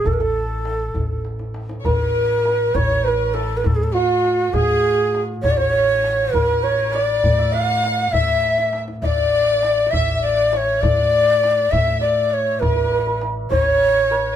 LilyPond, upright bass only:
\new Staff \with { instrumentName = "Upright bass" } { \clef bass \time 6/8 \tempo 4. = 67 a,,4. a,,4. | a,,4. a,,4. | a,4. a,4. | a,,4. a,,4. |
a,4. a,4. | a,,4. a,,4. | a,4. a,4. | a,,4. a,,4. | }